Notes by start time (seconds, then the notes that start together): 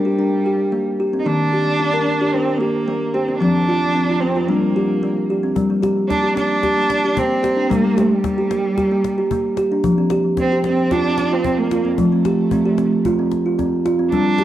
Already playing: G3
0.05 G4
0.19 D4
0.46 G4
0.72 A#3
1.00 G4
1.13 C4
1.19 D#4
1.26 D#3 A#3 D4
1.53 G4
1.80 D4
1.94 A#4
2.06 D4
2.21 G4
2.34 C4 D4
2.58 A#3 G4
2.88 A#3
3.14 C4 G4
3.28 C4
3.38 F3 C4 D4
3.69 F4
3.95 C4
4.09 F4
4.20 C4
4.36 F4
4.48 G3 A#3 D4
4.76 G4
5.03 A#3
5.30 G4
5.43 C4
5.56 G3, cajon bass
5.70 A#3
5.83 G4, cajon slap
6.09 A#3 D4, cajon bass, cajon slap
6.23 G4
6.36 A#3 D4, cajon slap
6.63 G4, cajon bass, cajon slap
6.78 A#3
6.90 cajon slap
7.04 G4
7.17 A#3 C4, cajon bass
7.31 cajon slap
7.43 G4, cajon slap
7.57 D4, cajon slap
7.70 G3 A#3, cajon bass
7.84 A#3
7.97 G3 G4, cajon slap
8.24 A#3, cajon bass, cajon slap
8.38 G4
8.51 A#3, cajon slap
8.78 G4, cajon bass, cajon slap
8.91 A#3
9.04 cajon slap
9.18 G4
9.31 A#3, cajon bass
9.44 cajon slap
9.57 G4, cajon slap
9.71 D4, cajon slap
9.84 F3, cajon bass
9.98 C4
10.10 G4, cajon slap
10.37 C4, cajon bass, cajon slap
10.52 G4
10.64 C4, cajon slap
10.91 D4 F4, cajon bass, cajon slap
11.05 C4
11.18 cajon slap
11.32 C4 F4
11.44 C4, cajon bass
11.57 A#3
11.71 F4, cajon slap
11.85 C4, cajon slap
11.97 F3 A3, cajon bass
12.12 C4
12.25 G4, cajon slap
12.39 cajon slap
12.51 C4, cajon bass
12.65 G4, cajon slap
12.78 C4, cajon slap
13.05 F4, cajon bass
13.18 C4, cajon slap
13.31 cajon slap
13.45 F4, cajon slap
13.59 C4, cajon bass, cajon slap
13.85 F4, cajon slap
13.99 C4, cajon slap
14.11 G3 D4, cajon bass, cajon slap
14.38 G4, cajon slap